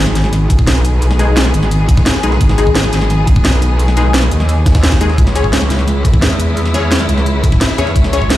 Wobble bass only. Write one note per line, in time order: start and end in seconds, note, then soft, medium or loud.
0.00 0.14 G#1 loud
0.15 0.66 G#1 loud
0.67 1.53 B1 loud
1.54 2.05 G#1 loud
2.23 2.39 B1 loud
2.41 2.91 G#1 loud
2.93 3.43 G#1 loud
3.45 4.30 B1 loud
4.31 5.17 D#2 loud
5.18 5.69 C#2 loud
5.70 6.21 C#2 loud
6.22 7.08 E2 loud
7.09 7.60 C#2 loud
7.78 7.94 E2 loud
7.96 8.37 C#2 loud